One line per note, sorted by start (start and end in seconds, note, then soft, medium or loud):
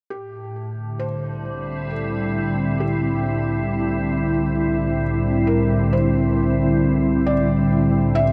0.10 8.32 C2 medium
0.10 8.32 A2 medium
0.10 1.03 G4 medium
0.69 8.32 D3 medium
0.99 8.32 G3 medium
0.99 1.93 C5 medium
1.39 8.32 C4 medium
1.39 8.32 E4 medium
1.91 2.83 A4 medium
2.80 5.00 G4 medium
5.47 5.94 A#4 medium
5.93 7.32 C5 medium
7.26 8.21 D5 medium
8.15 8.32 E5 medium